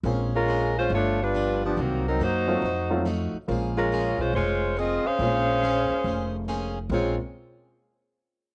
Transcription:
X:1
M:4/4
L:1/8
Q:"Swing" 1/4=140
K:Bbm
V:1 name="Saxophone section"
z [A,DFB]2 [A,DFc] [=A,=DF_d] [=G,=DF=B]2 [F,=B,D=G] | [E,B,CG] [G,CEB] [B,EGc]4 z2 | z [A,DFB]2 [A,DFc] [A,Fcd]2 [CFAe] [DAcf]- | [DAcf]6 z2 |
[A,CFd] z6 z |]
V:2 name="Steel-string acoustic guitar"
[B,DAc] z [B,DAc] z [=G,,F,=B,=D] z [G,,F,B,D] z | [C,G,B,E] z [C,G,B,E] z [F,=A,EG] z [F,A,EG] z | [B,DAc] z [B,DAc] z [B,DAc] z [B,DAc] z | [B,DAc] z [B,DAc] z [B,DAc] z [B,DAc] z |
[B,DAc] z6 z |]
V:3 name="Grand piano"
[A,B,CDF] z6 z | z3 [G,=A,CEF] z [G,A,CEF] z2 | [A,B,DFc]4- [A,B,DFc] z3 | [A,B,DFc]4- [A,B,DFc] z3 |
[A,B,CDF] z6 z |]
V:4 name="Upright bass" clef=bass
B,,,4 =G,,,4 | C,,2 G,,2 F,,3 z | B,,,3 _C,, F,,,3 z | B,,,3 z F,,,4 |
B,,, z6 z |]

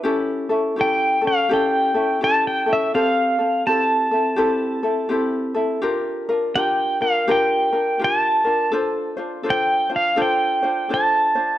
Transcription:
X:1
M:4/4
L:1/8
Q:"Swing" 1/4=83
K:Dm
V:1 name="Pedal steel guitar"
z2 g f g2 (3a g e | f2 a4 z2 | z2 g f g2 a2 | z2 g f g2 a2 |]
V:2 name="Ukulele"
[^CEGA] [CEA] [CEGA] [CA] [CEGA] [CEA] [CEGA] [CEA] | [CGA] [CA] [CEGA] [CEA] [CEGA] [CEA] [CEGA] [CEA] | [DFGB] [DFB] [DFGB] [DFB] [DFGB] [DFB] [DFGB] [DFB] | [DFAc] [DFc] [DFAc] [DFc] [DFAc] [DFc] [DFAc] [DFc] |]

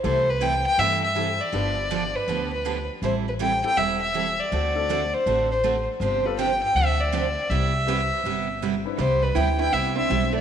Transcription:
X:1
M:4/4
L:1/16
Q:"Swing" 1/4=161
K:C
V:1 name="Fiddle"
c2 B2 g2 g2 e2 e4 d2- | d6 B4 B4 z2 | c2 B2 g2 g2 e2 e4 d2- | d6 c4 c4 z2 |
c2 B2 g2 g2 e2 d6 | e12 z4 | c2 B2 g2 g2 e2 e4 d2 |]
V:2 name="Upright piano"
[CEGA]2 z8 z2 [CEGA]2 z2 | [DFGB]8- [DFGB]2 z6 | z6 [CEGA]2 z8 | z2 [CD^FA]6 z8 |
z2 [CFGA]6 z8 | z4 [CEGB]6 z4 [CDEB]2 | z6 [CDEB]2 z2 [CDEc]6 |]
V:3 name="Hollow-body jazz guitar"
z16 | z16 | z16 | z16 |
z16 | z16 | G,2 G,2 E2 E2 C2 C4 A,2 |]
V:4 name="Steel-string acoustic guitar"
[C,E,A,EA]2 z2 [C,E,A,EA] z3 [C,E,A,EA]2 z2 [C,E,A,EA] z3 | [D,F,B,DG]2 z2 [D,F,B,DG] z3 [D,F,B,DG]2 z2 [D,F,B,DG] z3 | [E,G,CEA]2 z2 [E,G,CEA] z3 [E,G,CEA]2 z2 [E,G,CEA] z3 | [D,A,C^FA]2 z2 [D,A,CFA] z3 [D,A,CFA]2 z2 [D,A,CFA] z3 |
[C,F,CDG]2 z2 [C,F,CDG] z3 [C,F,CDG]2 z2 [C,F,CDG] z3 | [C,G,B,EG]2 z2 [C,G,B,EG] z3 [C,G,B,EG]2 z2 [C,G,B,EG] z3 | [C,G,B,EG]2 z2 [C,G,B,EG] z3 [C,G,B,EG]2 z2 [C,G,B,EG] z3 |]
V:5 name="Upright bass" clef=bass
C,,8 G,,8 | G,,,8 D,,8 | A,,,8 E,,,8 | D,,8 A,,,8 |
G,,,8 D,,8 | C,,8 G,,,8 | C,,4 D,,4 C,,4 B,,,4 |]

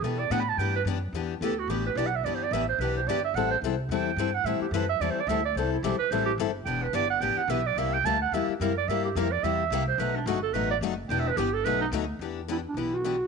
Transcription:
X:1
M:4/4
L:1/8
Q:"Swing" 1/4=217
K:Em
V:1 name="Clarinet"
A d (3f b a g B z2 | z2 A F G B (3d f e | (3d c d e c B c d e | f c z2 g3 f |
e G B e (3d c d e d | c E G B c G z2 | g B d f g f e d | e g a f e G _B d |
e G _B d e3 c | B D F A B d z2 | (3g e B G A B ^D z2 | z8 |]
V:2 name="Clarinet"
z8 | z8 | z8 | z8 |
z8 | z8 | z8 | z8 |
z8 | z8 | z8 | z2 E D E F3 |]
V:3 name="Steel-string acoustic guitar"
[E,B,DG] z [E,B,DG] z [E,B,DG] z [E,B,DG] z | [E,B,DG] z [E,B,DG] z [E,B,DG] z [E,B,DG] z | [E,B,DG] z [E,B,DG] z [E,B,DG] z [E,B,DG] z | [E,G,CEA] z [E,G,CEA] z [E,G,CEA] z [E,G,CEA] z |
[E,G,CEA] z [E,G,CEA] z [E,G,CEA] z [E,G,CEA] z | [E,G,CEA] z [E,G,CEA] z [E,G,CEA] z [E,G,CEA] z | [E,B,DG] z [E,B,DG] z [E,B,DG] z [E,B,DG] z | [C,G,_B,EG] z [C,G,B,EG] z [C,G,B,EG] z [C,G,B,EG] z |
[C,G,_B,EG] z [C,G,B,EG] z [C,G,B,EG] z [C,G,B,EG] z | [B,,F,A,^DF] z [B,,F,A,DF] z [B,,F,A,DF] z [B,,F,A,DF] z | [E,B,DG] z [E,B,DG] z [B,,F,A,^DF] z [B,,F,A,DF] z | [E,B,DG] z [E,B,DG] z [E,B,DG] z [E,B,DG] z |]
V:4 name="Upright bass" clef=bass
B,,2 A,,2 G,,2 F,,2 | E,,2 D,,2 A,,,2 B,,,2 | G,,,2 A,,,2 B,,,2 G,,,2 | A,,,2 C,,2 E,,2 G,,2 |
A,, z F,,2 E,, z D,,2 | C,,2 B,,, z A,,,2 G,,,2 | E,,,2 G,,,2 A,,, z B,,,2 | C,,2 D,,2 E,, z F,,2 |
G,,2 =F,,2 E,,2 C,,2 | B,,,2 G,,,2 A,,,2 F,,,2 | E,,,2 G,,,2 B,,,2 D,,2 | E,,4 B,,,4 |]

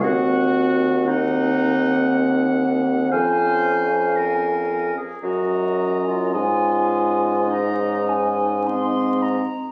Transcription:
X:1
M:3/4
L:1/16
Q:1/4=56
K:Db
V:1 name="Flute"
g4 g8 | a6- a z b4 | a4 b2 a2 c'2 b2 |]
V:2 name="Oboe"
g4 g8 | f6- f z e4 | e4 e4 e2 z2 |]
V:3 name="Clarinet"
G4 E6 z2 | c4 B3 A G3 F | F4 E4 z4 |]
V:4 name="French horn"
C4 C8 | D6- D z D4 | D4 D4 C2 z2 |]
V:5 name="Bassoon" clef=bass
E,,12 | F,,6- F,, z G,,4 | A,,8- A,,2 z2 |]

